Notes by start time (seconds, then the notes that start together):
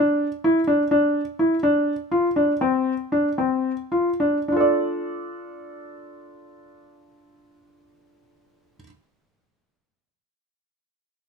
Already playing: D4
0.44 E4
0.67 D4
0.91 D4
1.39 E4
1.63 D4
2.12 F4
2.36 D4
2.61 C4
3.12 D4
3.38 C4
3.92 F4
4.20 D4
4.48 D4 F4
4.56 A4 D5